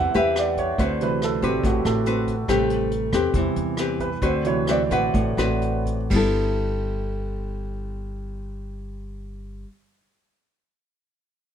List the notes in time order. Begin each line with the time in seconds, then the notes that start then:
Already playing: E2 C3 E3 G3 C4 G4 A4 B4 C5 E5 F#5
0.14 E2 C4 G4 B4 E5, closed hi-hat
0.36 D5, cross-stick, closed hi-hat
0.57 C#5, kick, closed hi-hat
0.78 D2 D3 C4 F#4 B4, kick, closed hi-hat
0.82 C5
1.01 C3 E3 F#3 B4, closed hi-hat
1.22 A4, cross-stick, closed hi-hat
1.42 A1 C4 F#4 G4 B4, kick, closed hi-hat
1.63 A1 A2 F#4, kick, closed hi-hat
1.85 A1 A4, cross-stick, closed hi-hat
2.06 C4 F#4 B4, closed hi-hat
2.27 kick, closed hi-hat
2.48 A1 C3 G3 A3 C4 G4 B4, kick, cross-stick, closed hi-hat
2.70 closed hi-hat
2.91 closed hi-hat
3.12 E2 C4 G4 B4, kick, cross-stick, closed hi-hat
3.34 E2 C3 E3 G3 B3, kick, closed hi-hat
3.56 E2, closed hi-hat
3.77 C4 G4 B4, cross-stick, closed hi-hat
4.00 B4, kick, closed hi-hat
4.22 D2 D3 C4 F#4 B4 C5, kick, closed hi-hat
4.44 C3 E3 F#3 C#5, closed hi-hat
4.67 C4 F#4 B4 D5, cross-stick, closed hi-hat
4.91 A1 C4 F#4 B4 F#5, kick, closed hi-hat
5.14 A1 A2, kick, closed hi-hat
5.37 A1 C4 F#4 B4, cross-stick, closed hi-hat
5.62 closed hi-hat
5.86 kick, closed hi-hat
6.10 G1 G3 B3, kick, crash
6.15 E4 A4